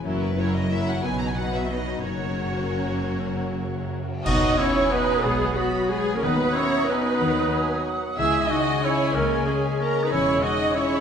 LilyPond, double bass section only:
\new Staff \with { instrumentName = "Double bass section" } { \clef bass \time 3/4 \key b \major \tempo 4 = 180 fis,,2. | b,,2. | fis,,2.~ | fis,,2~ fis,,8 r8 |
b,,4 r2 | b,,4 r2 | dis,4 r2 | dis,4 r2 |
cis,4 r2 | cis,4 r2 | e,,4 r2 | }